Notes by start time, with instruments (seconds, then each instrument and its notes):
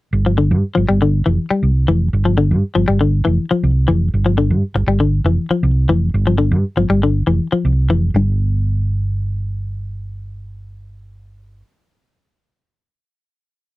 0.13 fingered electric bass G1
0.26 clean electric guitar F3
0.38 clean electric guitar D3
0.51 fingered electric bass G2
0.75 fingered electric bass G1, clean electric guitar F3
0.89 fingered electric bass G1, clean electric guitar G3
1.02 clean electric guitar D3
1.26 fingered electric bass F1, clean electric guitar E3
1.50 clean electric guitar G3, muted fingered electric bass stroke
1.63 fingered electric bass C2
1.88 fingered electric bass F1, clean electric guitar E3
2.13 fingered electric bass G1
2.25 clean electric guitar F3
2.38 clean electric guitar D3
2.51 fingered electric bass G2
2.75 fingered electric bass G1, clean electric guitar F3
2.88 fingered electric bass G1, clean electric guitar G3
3.01 clean electric guitar D3
3.25 fingered electric bass F1, clean electric guitar E3
3.51 clean electric guitar F3, muted fingered electric bass stroke
3.63 fingered electric bass C2
3.88 fingered electric bass F1, clean electric guitar E3
4.14 fingered electric bass G1
4.26 clean electric guitar F3
4.38 clean electric guitar D3
4.50 fingered electric bass G2
4.75 fingered electric bass G1, muted clean electric guitar stroke
4.87 fingered electric bass G1, clean electric guitar G3
5.00 clean electric guitar D3
5.24 fingered electric bass F1, clean electric guitar E3
5.50 clean electric guitar F3, muted fingered electric bass stroke
5.63 fingered electric bass C2
5.89 fingered electric bass F1, clean electric guitar E3
6.14 fingered electric bass G1
6.27 clean electric guitar F3
6.38 clean electric guitar D3
6.51 fingered electric bass G2
6.77 fingered electric bass G1, clean electric guitar F3
6.89 fingered electric bass G1, clean electric guitar G3
7.03 clean electric guitar D3
7.27 fingered electric bass F1, clean electric guitar E3
7.52 clean electric guitar F3, muted fingered electric bass stroke
7.65 fingered electric bass C2
7.89 fingered electric bass F1, clean electric guitar E3
8.14 fingered electric bass G1, clean electric guitar G2